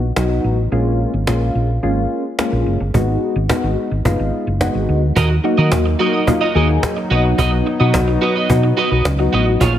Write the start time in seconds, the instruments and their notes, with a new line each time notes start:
Already playing: fingered electric bass A#1
0.16 fingered electric bass B1, synth keys F#3 B3 D#4 F#4, cajon slap
0.44 fingered electric bass A1
0.72 fingered electric bass A#1, synth keys G#3 A#3 C#4 F4
1.14 fingered electric bass G#1
1.27 fingered electric bass A#1, synth keys G#3 A#3 C#4 F4, cajon slap
1.55 fingered electric bass A#1
1.83 fingered electric bass G#1, synth keys G#3 A#3 C#4 F4
2.38 synth keys G#3 A#3 C#4 F4, cajon slap
2.52 fingered electric bass A#1
2.66 fingered electric bass F#1
2.80 fingered electric bass G1
2.94 fingered electric bass G#1, synth keys G#3 B3 D#4 F#4, cajon bass
3.36 fingered electric bass G#1
3.50 synth keys G#3 B3 D#4 F#4, cajon bass, cajon slap
3.63 fingered electric bass G#1
3.91 fingered electric bass G#1
4.05 fingered electric bass F#1, synth keys G#3 B3 D#4 F4, cajon bass
4.19 fingered electric bass G#1
4.47 fingered electric bass F#1
4.61 synth keys G#3 B3 D#4 F#4, cajon bass, cajon slap
4.75 fingered electric bass G#1
4.89 fingered electric bass D2
5.16 fingered electric bass D#2, analog synth pad F#3 A#3 D#4, clean electric guitar F#4 A#4 D#5, cajon bass
5.30 muted clean electric guitar stroke, cajon slap
5.44 synth keys F#3 A#3 D#4 F#4, muted clean electric guitar stroke, cajon slap
5.58 fingered electric bass D#3, clean electric guitar F#4 A#4 D#5, cajon slap
5.72 fingered electric bass D#2, cajon bass, cajon slap
5.86 muted clean electric guitar stroke, cajon slap
5.99 synth keys F#3 A#3 D#4 F#4, clean electric guitar F#4 A#4 D#5, cajon slap
6.13 clean electric guitar F#4 A#4 D#5, cajon slap
6.27 synth keys F#3 A#3 D#4 F4, muted clean electric guitar stroke, cajon bass
6.41 clean electric guitar F#4 A#4 D#5, cajon slap
6.55 fingered electric bass D#2, synth keys F#3 A#3 D#4 G#4, clean electric guitar F#4 A#4 D#5, cajon slap
6.69 muted clean electric guitar stroke, cajon slap
6.83 cajon bass, cajon slap
6.97 muted clean electric guitar stroke, cajon slap
7.10 fingered electric bass B1, synth keys F#3 B3 D#4 F#4, analog synth pad B3, clean electric guitar F#4 B4 D#5, cajon slap
7.24 muted clean electric guitar stroke, cajon slap
7.38 fingered electric bass B1, clean electric guitar F#4 B4 D#5, cajon bass
7.52 muted clean electric guitar stroke, cajon slap
7.66 muted clean electric guitar stroke, cajon slap
7.80 fingered electric bass B2, synth keys F#3 B3 D#4 F#4, clean electric guitar F#4 B4 D#5, cajon slap
7.94 fingered electric bass B1, muted clean electric guitar stroke, cajon bass, cajon slap
8.08 muted clean electric guitar stroke, cajon slap
8.21 clean electric guitar F#4 B4 D#5, cajon slap
8.35 clean electric guitar F#4 B4 D#5, cajon slap
8.49 fingered electric bass B2, synth keys F#3 B3 D#4 F#4, muted clean electric guitar stroke, cajon bass
8.63 muted clean electric guitar stroke, cajon slap
8.77 clean electric guitar F#4 B4 D#5, cajon slap
8.91 fingered electric bass B1, clean electric guitar F#4 B4 D#5, cajon slap
9.05 fingered electric bass C#2, cajon bass, cajon slap
9.19 synth keys F#3 B3 D#4 F#4, muted clean electric guitar stroke, cajon slap
9.33 fingered electric bass A1, clean electric guitar F#4 B4 D#5, cajon slap
9.47 muted clean electric guitar stroke, cajon slap
9.60 fingered electric bass A#1, analog synth pad G#3 A#3 C#4, clean electric guitar F4 G#4 C#5, cajon bass
9.74 muted clean electric guitar stroke, cajon slap